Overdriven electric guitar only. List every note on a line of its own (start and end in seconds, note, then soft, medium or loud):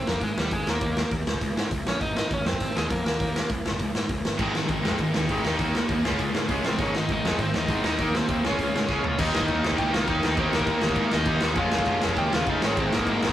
0.08 0.21 A#3 medium
0.08 0.23 A#4 medium
0.23 0.36 G#3 medium
0.23 0.39 G#4 medium
0.38 0.51 G3 medium
0.38 0.53 G4 medium
0.53 0.67 G#3 medium
0.53 0.69 G#4 medium
0.69 1.10 A#3 medium
0.69 1.12 A#4 medium
1.88 2.01 C#4 medium
1.88 2.01 C#5 loud
2.01 2.16 D#4 medium
2.01 2.16 D#5 loud
2.17 2.31 D#4 medium
2.17 2.33 D#5 loud
2.33 2.46 C#4 medium
2.33 2.47 C#5 loud
2.47 2.75 C4 medium
2.47 2.77 C5 loud
2.76 2.90 G#3 medium
2.76 2.90 G#4 medium
2.90 3.04 A#3 medium
2.90 3.05 A#4 medium
3.05 3.47 A#3 medium
3.05 3.48 A#4 medium
6.65 6.79 C4 medium
6.65 6.82 C5 loud
6.81 6.94 C#4 medium
6.81 6.96 C#5 loud
6.94 7.08 D#4 medium
6.94 7.11 D#5 loud
7.11 7.38 D#4 medium
7.11 7.42 D#5 loud
7.42 7.54 C4 medium
7.42 7.56 C5 medium
7.56 7.97 D#4 medium
7.56 8.02 D#5 loud
8.01 8.14 A#3 medium
8.01 8.14 A#4 medium
8.17 8.43 C4 medium
8.17 8.43 C5 medium
8.46 8.75 C#4 medium
8.46 8.74 C#5 medium
8.76 9.03 C#4 medium
8.76 9.03 C#5 medium
9.05 9.19 C#4 medium
9.05 9.18 C#5 medium
9.20 9.61 D#4 medium
9.20 9.61 D#5 loud
9.78 9.92 G4 medium
9.78 9.95 G5 medium
9.93 10.07 F4 medium
9.93 10.09 F5 loud
10.08 10.36 D#4 medium
10.08 10.39 D#5 loud
10.39 10.52 C4 medium
10.39 10.54 C5 medium
10.55 11.10 A#3 medium
10.55 11.16 A#4 medium
11.13 11.41 D#4 medium
11.13 11.41 D#5 loud
11.57 11.99 F4 medium
11.57 12.00 F5 loud
12.17 12.31 G4 medium
12.17 12.33 G5 loud
12.34 12.47 F4 medium
12.34 12.49 F5 loud
12.49 12.62 D#4 medium
12.49 12.64 D#5 loud
12.64 12.77 C#4 medium
12.64 12.79 C#5 loud
12.79 12.92 C4 medium
12.79 12.94 C5 loud
12.93 13.33 A#3 medium
12.93 13.33 A#4 medium